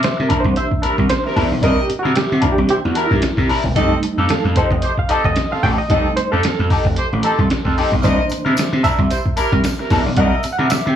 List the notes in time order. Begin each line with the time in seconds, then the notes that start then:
Already playing: A#3 G4 E5
0.03 C5, muted slap bass stroke, snare, closed hi-hat
0.17 C3, muted clean electric guitar stroke
0.22 A#4
0.29 E3 A#3 D4 E4 A#4, kick, closed hi-hat
0.40 C5, muted clean electric guitar stroke
0.45 C2, kick
0.56 G3 E4 C5 E5, muted clean electric guitar stroke, closed hi-hat
0.71 kick
0.82 G3 D4 E4 A#4, muted slap bass stroke, closed hi-hat
0.97 C2, muted clean electric guitar stroke, kick
1.09 C5, muted clean electric guitar stroke, snare, closed hi-hat
1.24 G3 E4 A#4, muted clean electric guitar stroke, snare
1.36 E2 D4 E4 A#4, kick, snare, open hi-hat
1.51 B1, muted clean electric guitar stroke
1.62 C2 D4 E4 A#4 D#5, kick, closed hi-hat
1.82 G4
1.88 muted clean electric guitar stroke, muted slap bass stroke, closed hi-hat
1.99 F#4 A#4
2.04 C3 A#3 D4 E4 G4 E5
2.16 G4, muted slap bass stroke, snare, closed hi-hat
2.30 C3, muted clean electric guitar stroke
2.34 F#4
2.41 E3 A#3 D4 E4 A#4, kick, closed hi-hat
2.52 G4
2.57 C2, muted clean electric guitar stroke
2.69 G3 E4 G4 C5, muted clean electric guitar stroke, closed hi-hat
2.85 E2 F#4
2.95 G3 D4 E4 A#4, closed hi-hat
3.06 E4
3.11 G2, muted clean electric guitar stroke, kick
3.22 muted clean electric guitar stroke, snare, closed hi-hat
3.37 C3 G3 E4 A#4, muted clean electric guitar stroke, kick, snare
3.49 D4 E4 A#4, snare, open hi-hat
3.64 E1, muted clean electric guitar stroke, kick
3.75 F1 G3 A3 C4 D#4 G4 A4 D#5, kick, closed hi-hat
4.03 muted slap bass stroke, muted clean electric guitar stroke, closed hi-hat
4.18 F2 C4 D#4 G4 A4 F5
4.29 A4, muted slap bass stroke, snare, closed hi-hat
4.44 F2, muted clean electric guitar stroke
4.56 D#4 G4 A4 C5, kick, closed hi-hat
4.71 F1 D#5, muted clean electric guitar stroke, kick
4.82 A3 G4 C5, muted clean electric guitar stroke, closed hi-hat
4.98 F5, kick
5.09 D#3 C4 D#4 G4 A4 D#5, muted slap bass stroke, closed hi-hat
5.24 F1 D#5, muted clean electric guitar stroke, kick
5.36 muted clean electric guitar stroke, snare, closed hi-hat
5.50 D#3 C4 A4 F5, muted clean electric guitar stroke, muted slap bass stroke, snare
5.63 A1 D#4 G4 A4 G5, kick, snare, open hi-hat
5.78 D#5, muted clean electric guitar stroke
5.88 F1 G3 A3 C4 D#4 G4 A4 D#5, kick, closed hi-hat
6.16 C5, muted clean electric guitar stroke, muted slap bass stroke, closed hi-hat
6.31 F2 C4 D#4 G4 A4 F5
6.43 muted slap bass stroke, snare, closed hi-hat
6.59 F2, muted clean electric guitar stroke
6.70 D#4 G4 A4, kick, open hi-hat
6.85 F1, muted clean electric guitar stroke, kick
6.96 A3 G4 C5, muted clean electric guitar stroke, closed hi-hat
7.13 A1
7.22 D#3 C4 D#4 G4 A4, closed hi-hat
7.39 C2, muted clean electric guitar stroke, kick
7.50 muted clean electric guitar stroke, snare, closed hi-hat
7.63 F2 D#3 C4 A4, muted clean electric guitar stroke, kick
7.67 snare
7.78 D#4 G4 A4, snare, open hi-hat
7.92 B1, muted clean electric guitar stroke, kick
8.02 C2 E3 A#3 D4 E4 A#4 C5 D#5, kick, closed hi-hat, tambourine
8.30 muted clean electric guitar stroke, muted slap bass stroke, closed hi-hat, tambourine
8.45 C3 A#3 D4 E4 G4 A#4 E5
8.57 muted slap bass stroke, snare, closed hi-hat, tambourine
8.73 C3, muted clean electric guitar stroke
8.83 D4 E4 A#4 E5, kick, closed hi-hat, tambourine
8.99 C2, muted clean electric guitar stroke, kick
9.10 G3 E4 C5, muted clean electric guitar stroke, closed hi-hat, tambourine
9.26 kick
9.37 G3 D4 E4 A#4, muted slap bass stroke, closed hi-hat, tambourine
9.52 C2, kick
9.64 muted clean electric guitar stroke, snare, closed hi-hat, tambourine
9.79 G3 E4 A#4, muted clean electric guitar stroke, snare
9.90 E2 D4 E4 A#4, kick, snare, open hi-hat, tambourine
10.05 B1, muted clean electric guitar stroke
10.16 C2 D4 E4 A#4 D#5 F#5, kick, closed hi-hat
10.35 E5
10.43 muted clean electric guitar stroke, muted slap bass stroke, closed hi-hat, tambourine
10.53 F#5
10.58 C3 A#3 D4 E4 G4 A#4 E5
10.70 E5, muted slap bass stroke, snare, closed hi-hat, tambourine
10.86 C3 G5, muted clean electric guitar stroke